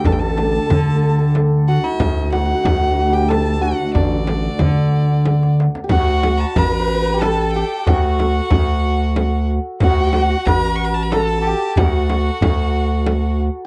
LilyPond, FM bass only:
\new Staff \with { instrumentName = "FM bass" } { \clef bass \time 3/4 \tempo 4 = 92 a,,4 d2 | d,4 d,2 | a,,4 d2 | d,4 a,,2 |
d,4 d,2 | d,4 a,,2 | d,4 d,2 | }